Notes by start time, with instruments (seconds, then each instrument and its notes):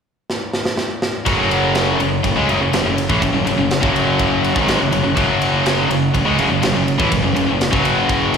0.30 snare
0.53 snare
0.65 snare
0.77 snare
1.02 snare
1.25 fingered electric bass F#1, distorted electric guitar F#2 C#3 F#3, pipe organ C#3 A3 F#4 C#5, kick, ride
1.51 ride
1.75 snare, ride
1.99 fingered electric bass F#1, distorted electric guitar F#2 C#3, ride
2.23 fingered electric bass F#1, distorted electric guitar F#2 C#3, kick, ride
2.36 fingered electric bass C#2, distorted electric guitar C#3 G#3
2.48 fingered electric bass F#1, distorted electric guitar F#2 C#3, ride
2.60 fingered electric bass F#1, distorted electric guitar F#2 C#3
2.72 fingered electric bass F#1, distorted electric guitar F#2 C#3, snare, ride
2.84 fingered electric bass F#1, distorted electric guitar F#2 C#3
2.98 ride
3.09 fingered electric bass A1, distorted electric guitar A2 E3, kick
3.21 fingered electric bass F#1, distorted electric guitar F#2 C#3, kick, ride
3.33 fingered electric bass F#1, distorted electric guitar F#2 C#3
3.46 fingered electric bass F#1, distorted electric guitar F#2 C#3, ride
3.58 fingered electric bass F#1, distorted electric guitar F#2 C#3
3.71 snare, ride
3.81 fingered electric bass F#1, distorted electric guitar F#2 C#3 F#3, kick
3.96 ride
4.20 kick, ride
4.44 ride
4.54 fingered electric bass G#1, distorted electric guitar G#2 D#3 G#3, kick
4.68 snare, ride
4.80 fingered electric bass F#1, distorted electric guitar F#2 C#3
4.91 fingered electric bass F#1, distorted electric guitar F#2 C#3, ride
5.04 fingered electric bass F#1, distorted electric guitar F#2 C#3
5.16 fingered electric bass F#1, distorted electric guitar F#2 C#3 F#3, kick, ride
5.42 ride
5.66 snare, ride
5.89 fingered electric bass F#1, distorted electric guitar F#2 C#3, ride
6.14 fingered electric bass F#1, distorted electric guitar F#2 C#3, kick, ride
6.25 fingered electric bass C#2, distorted electric guitar C#3 G#3
6.37 fingered electric bass F#1, distorted electric guitar F#2 C#3, ride
6.49 fingered electric bass F#1, distorted electric guitar F#2 C#3
6.62 fingered electric bass F#1, distorted electric guitar F#2 C#3, snare, ride
6.74 fingered electric bass F#1, distorted electric guitar F#2 C#3
6.88 ride
6.98 fingered electric bass A1, distorted electric guitar A2 E3, kick
7.11 fingered electric bass F#1, distorted electric guitar F#2 C#3, pipe organ B4, kick, ride
7.22 fingered electric bass F#1, distorted electric guitar F#2 C#3
7.35 fingered electric bass F#1, distorted electric guitar F#2 C#3, ride
7.47 fingered electric bass F#1, distorted electric guitar F#2 C#3
7.61 snare, ride
7.71 fingered electric bass F#1, distorted electric guitar F#2 C#3 F#3, kick
7.85 ride
8.09 kick, ride
8.34 ride